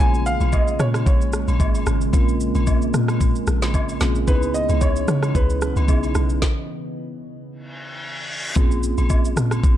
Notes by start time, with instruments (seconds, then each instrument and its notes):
Already playing: ambient pad C#3, tine electric piano C#5
0.00 log drum bass A#1, tine electric piano G#3 A#3 C#4 F4 G#4, ambient pad G#3 A#3, grand piano G#5
0.14 shaker
0.26 grand piano F5, shaker
0.40 log drum bass A#1, high agogo, shaker
0.53 grand piano D#5, kick, low woodblock, shaker
0.68 shaker
0.79 log drum bass A#2, grand piano C#5, cross-stick, shaker
0.94 cross-stick, high agogo, shaker
1.06 log drum bass A#1, grand piano C#5, kick, shaker
1.21 shaker
1.33 cross-stick, shaker
1.48 log drum bass A#1, high agogo, shaker
1.60 log drum bass G#1, kick, low woodblock, shaker
1.75 high agogo, shaker
1.86 log drum bass G#1, cross-stick, shaker
2.01 shaker
2.13 log drum bass A#1, tine electric piano A#3 C4 C#4 F4 A#4, kick, high agogo, shaker
2.29 shaker
2.40 shaker
2.55 log drum bass A#1, high agogo, shaker
2.67 kick, low woodblock, shaker
2.82 shaker
2.94 log drum bass A#2, cross-stick, shaker
3.08 cross-stick, high agogo, shaker
3.21 kick, shaker
3.35 shaker
3.47 log drum bass A#1, cross-stick, shaker
3.62 snare, high agogo, shaker
3.74 kick, low woodblock, shaker
3.89 high agogo, shaker
4.01 log drum bass A#1, tine electric piano A#3 C4 C#4 F4 G#4, cross-stick, snare, shaker
4.15 shaker
4.27 log drum bass C#2, ambient pad C#3 E3 B3 D#5, tine electric piano B3 C#4 D#4 E4 G#4, grand piano B4, kick, high agogo, shaker
4.43 shaker
4.54 grand piano D#5, shaker
4.69 log drum bass C#2, high agogo, shaker
4.81 grand piano C#5, kick, low woodblock, shaker
4.96 shaker
5.08 log drum bass C#3, cross-stick, shaker
5.23 cross-stick, high agogo, shaker
5.35 log drum bass C#2, grand piano B4, kick, shaker
5.50 shaker
5.61 cross-stick, shaker
5.76 log drum bass C#2, high agogo, shaker
5.88 log drum bass B1, tine electric piano B3 C#4 D#4 E4 G#4, kick, low woodblock, shaker
6.03 high agogo, shaker
6.15 log drum bass B1, cross-stick, shaker
6.29 shaker
6.42 kick, snare
7.49 reverse cymbal
8.56 log drum bass A#1, ambient pad C#3 G#3 A#3, tine electric piano A#3 C4 C#4 F4 G#4, kick, impact, high agogo, shaker
8.71 shaker
8.83 shaker
8.98 log drum bass A#1, high agogo, shaker
9.10 kick, low woodblock, shaker
9.25 shaker
9.37 log drum bass A#2, cross-stick, shaker
9.51 cross-stick, high agogo, shaker
9.64 log drum bass A#1, kick, shaker